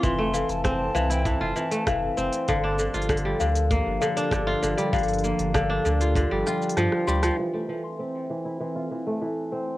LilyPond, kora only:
\new Staff \with { instrumentName = "Kora" } { \clef bass \time 4/4 \key f \major \tempo 4 = 98 e16 a16 e8 c'16 r16 e16 e'16 e16 f'16 e16 a16 e8 c'16 r16 | d16 d'16 d16 f'16 d16 g16 d8 bes16 r16 d16 d'16 d16 f'16 d16 g16 | d8 bes16 r16 d16 d'16 d16 f'16 d16 g16 f'16 r16 f16 r16 g16 f16 | e16 a16 e8 c'16 r16 e16 e'16 e16 f'16 e16 a16 e8 c'16 r16 | }